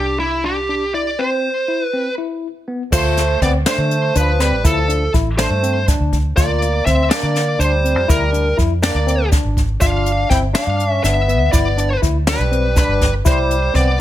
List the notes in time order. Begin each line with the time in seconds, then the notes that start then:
Already playing: C2 D4 G4
0.20 E4
0.44 D4 G4
0.69 D4
0.94 E4 D5
1.19 C4 C5
1.68 E4
1.83 B4
1.93 C4
2.18 E4
2.68 B3
2.92 D2 A3 F4 C5, kick, crash, shaker
3.17 snare, closed hi-hat
3.41 D2 B3 C4 D5, kick, closed hi-hat
3.66 A3 D4 C5, snare, closed hi-hat, shaker
3.78 D3
3.91 closed hi-hat
4.15 D2 F3 D4 B4, closed hi-hat, shaker
4.40 G3 C4 B4, snare, closed hi-hat
4.52 A1
4.64 D2 F3 E4 A4, kick, closed hi-hat, shaker
4.88 D4, closed hi-hat
5.14 A1 E4, kick, closed hi-hat
5.38 A3 D4 C5, snare, closed hi-hat, shaker
5.50 G2
5.63 C4, closed hi-hat
5.88 D4, kick, closed hi-hat, shaker
6.00 D2
6.13 kick, closed hi-hat
6.36 D2 A#3 F4 D5, kick, closed hi-hat, shaker
6.62 closed hi-hat
6.86 D2 C4 E5, kick, closed hi-hat
7.10 A#3 D4 D5, snare, closed hi-hat, shaker
7.23 D3
7.36 snare, closed hi-hat
7.59 D2 G3 D4 C5, closed hi-hat, shaker
7.84 C4, closed hi-hat
7.96 F2
8.08 D2 G3 E4 A#4, kick, closed hi-hat, shaker
8.32 D4, closed hi-hat, shaker
8.57 F2 E4, kick, closed hi-hat, shaker
8.82 A#3 D4 D5, snare, closed hi-hat, shaker
8.94 D2
9.07 C4, closed hi-hat
9.32 D4, kick, snare, closed hi-hat, shaker
9.45 G#1
9.57 kick, closed hi-hat
9.81 G1 D4 F4 F5, kick, closed hi-hat, shaker
10.06 closed hi-hat
10.30 G1 C4 E4 G5, kick, snare, closed hi-hat
10.54 D4 F5, snare, closed hi-hat, shaker
10.67 G2
10.80 closed hi-hat
10.89 C#4 E5
11.04 G1 B3 D4 E5, snare, closed hi-hat, shaker
11.28 B3, closed hi-hat
11.40 D2
11.52 G1 B3 E4 D5, kick, closed hi-hat, shaker
11.78 D4, closed hi-hat
12.02 D2 E4, kick, closed hi-hat
12.27 G3 D4 B4, snare, closed hi-hat, shaker
12.39 B1
12.51 C4, closed hi-hat
12.76 G3 D4 B4, kick, snare, closed hi-hat, shaker
12.88 G1
13.01 kick, snare, closed hi-hat
13.25 C2 G3 E4 C5, kick, closed hi-hat, shaker
13.51 closed hi-hat
13.74 C2 B3 C4 D5, kick, closed hi-hat